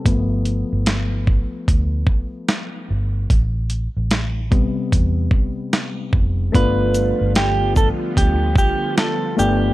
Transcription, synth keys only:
X:1
M:4/4
L:1/8
Q:"Swing 16ths" 1/4=74
K:Gmix
V:1 name="Synth keys"
[F,A,B,]3 z4 z | z3 [C,G,B,]3 z2 | [A,B,DF]3 z4 [A,B,DG] |]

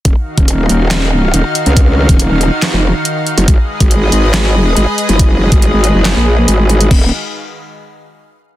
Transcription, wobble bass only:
X:1
M:4/4
L:1/16
Q:1/4=140
K:Ebm
V:1 name="Wobble bass" clef=bass
E,,, z2 E,,,3 E,,,6 E,,, z2 D,,- | D,,3 E,,,2 E,,,2 z2 F,,,2 z4 G,,, | z3 A,,,3 A,,,6 A,,, z2 G,,,- | G,,,3 A,,,2 A,,,2 G,,,2 B,,,3 A,,,4 |
E,,,2 z12 z2 |]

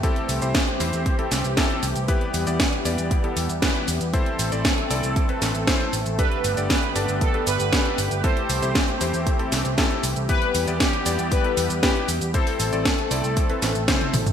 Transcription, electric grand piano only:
X:1
M:4/4
L:1/16
Q:1/4=117
K:Am
V:1 name="Electric grand piano"
[CEGA]3 [CEGc] z2 [CEGc]3 [CEGA]2 z [CEGA]2 z2 | [B,EGB]3 [B,EGd] z2 [B,EGd]3 [B,EGA]2 z [B,EGB]2 z2 | [CEAc]3 [CEAd] z2 [CEAd]3 [CEAB]2 z [CEAc]2 z2 | [DGAB]3 [DGAd] z2 [DGAd]3 [DGAB]2 z [DGAB]2 z2 |
[CEGA]3 [CEGc] z2 [CEGc]3 [CEGA]2 z [CEGA]2 z2 | [B,EGB]3 [B,EGd] z2 [B,EGd]3 [B,EGA]2 z [B,EGB]2 z2 | [CEAc]3 [CEAd] z2 [CEAd]3 [CEAB]2 z [CEAc]2 z2 |]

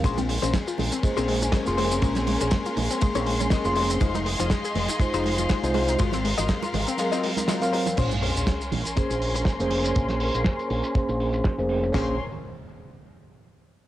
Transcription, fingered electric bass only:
X:1
M:4/4
L:1/16
Q:"Swing 16ths" 1/4=121
K:Bbm
V:1 name="Fingered electric bass" clef=bass
B,,,3 B,,, z2 B,,, z2 B,,,3 z F,,,3 | B,,,3 B,,, z2 B,,, z2 B,,,3 z F,,,3 | F,,,3 F,,, z2 F,,, z2 F,,,3 z C,,3 | A,,,3 A,,, z2 A,,, z8 z |
B,,,3 B,,, z2 B,,, z2 B,,,3 z F,,,3 | B,,,3 B,,, z2 B,,, z2 B,,,3 z F,,,3 | B,,,2 z12 z2 |]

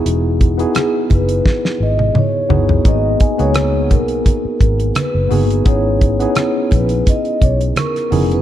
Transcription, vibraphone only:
X:1
M:4/4
L:1/16
Q:"Swing 16ths" 1/4=86
K:G#m
V:1 name="Vibraphone"
z4 G2 B4 d2 c4 | d3 c3 A6 B4 | c6 B2 d2 c2 A3 B |]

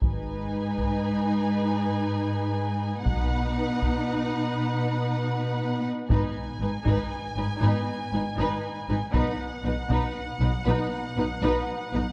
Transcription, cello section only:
X:1
M:3/4
L:1/8
Q:1/4=118
K:G#m
V:1 name="Cello section" clef=bass
G,,6- | G,,6 | B,,6- | B,,4- B,, z |
G,, z G,, G,, z G,, | G,, z G,, G,, z G,, | B,, z B,, B,, z B,, | B,, z B,, B,, z B,, |]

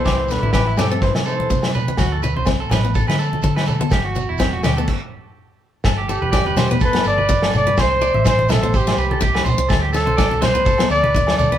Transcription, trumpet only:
X:1
M:4/4
L:1/8
Q:"Swing 16ths" 1/4=124
K:G
V:1 name="Trumpet"
c B B A c c2 z | z8 | z8 | z G3 B d2 d |
c2 c A G3 z | z A2 c2 d2 d |]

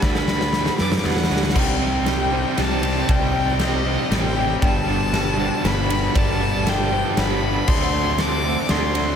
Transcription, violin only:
X:1
M:3/4
L:1/8
Q:1/4=118
K:G
V:1 name="Violin"
b3 d' f2 | g4 a2 | g2 _e2 g2 | a4 b2 |
a2 g2 b2 | c'2 d'2 c'2 |]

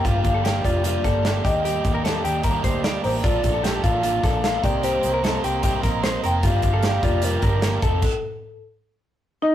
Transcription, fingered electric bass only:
X:1
M:4/4
L:1/8
Q:1/4=150
K:Gm
V:1 name="Fingered electric bass" clef=bass
G,,, G,,,2 F,,,2 G,,,2 E,,- | E,, E,,2 E,,2 D,,2 A,,, | B,,, B,,,2 A,,,2 B,,,2 C,,- | C,, C,,2 C,,2 B,,,2 F,,, |
G,,, G,,,2 F,,,2 G,,,2 F,,, | z8 |]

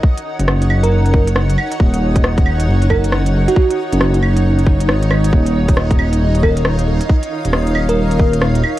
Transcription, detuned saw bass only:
X:1
M:4/4
L:1/16
Q:"Swing 16ths" 1/4=136
K:Ebm
V:1 name="Detuned saw bass" clef=bass
z3 G,,,8- G,,,3 z2 | E,,,8 G,,,6- G,,, z | z3 G,,,6- G,,, G,,,2 A,,,4 | E,,,8 E,,,6- E,,, z |
z3 E,,,8- E,,,3 z2 |]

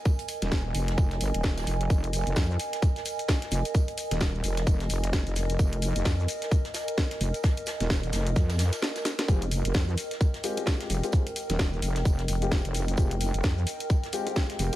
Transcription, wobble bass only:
X:1
M:4/4
L:1/16
Q:"Swing 16ths" 1/4=130
K:Fm
V:1 name="Wobble bass" clef=bass
z3 E,,,3 F,,,2 F,,,2 G,,, E,,,3 F,,,2 | F,,,3 F,,, F,,2 z8 F,,, z | z3 E,,,3 F,,,2 F,,,2 F,,,3 F,,,3 | F,,,3 F,,, F,,2 z8 F,,, z |
z3 E,,,3 F,,,2 F,,3 z4 z | F,,,3 F,,, F,,2 z8 F,,, z | z3 E,,,3 F,,,2 F,,,2 F,,,3 F,,,3 | F,,,3 F,,, F,,2 z8 F,,, z |]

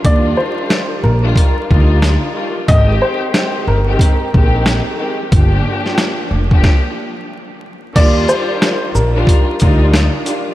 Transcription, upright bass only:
X:1
M:4/4
L:1/16
Q:"Swing 16ths" 1/4=91
K:Eb
V:1 name="Upright bass" clef=bass
E,,2 z4 B,,,2 z2 D,,3 z3 | A,,,2 z4 G,,,2 z2 B,,,3 z3 | G,,,2 z4 F,,,2 z8 | E,,2 z4 B,,,2 z2 D,,3 z3 |]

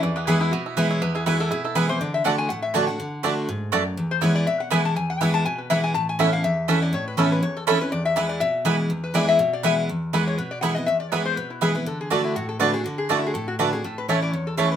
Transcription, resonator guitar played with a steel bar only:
X:1
M:4/4
L:1/16
Q:"Swing" 1/4=243
K:Emix
V:1 name="Resonator guitar played with a steel bar"
d2 B2 G2 E2 F4 z2 c2 | B2 G2 F2 A2 G2 A2 B2 =c2 | d2 e2 f2 g2 f2 e2 c2 f2- | f8 z8 |
z2 =c2 ^c2 d2 e2 f2 g2 a2 | g2 f2 g2 a2 g2 B2 e2 g2 | a2 g2 f2 =f2 e6 d2 | c2 B2 A2 B2 c2 A2 z2 B2 |
d2 e4 d2 e4 z4 | z2 B2 d2 e4 d2 e3 z | z6 c2 B2 d2 f2 ^d2 | e2 d2 c2 =c2 B2 E2 G2 B2 |
A2 G2 F2 E2 F2 A2 B2 G2 | F2 G2 (3F2 E2 G2 A2 F2 B2 G2 | A2 B2 c2 d2 c2 A2 G2 B2 |]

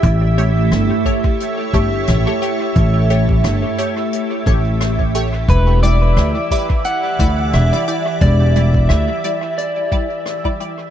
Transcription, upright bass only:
X:1
M:4/4
L:1/8
Q:"Swing 16ths" 1/4=88
K:Edor
V:1 name="Upright bass" clef=bass
A,,,2 G,,, z2 G,,, A,,, z | A,,,2 G,,, z2 A,,,3 | E,,,2 D,, z2 D,, E,,, z | E,,,2 D,, z4 z |]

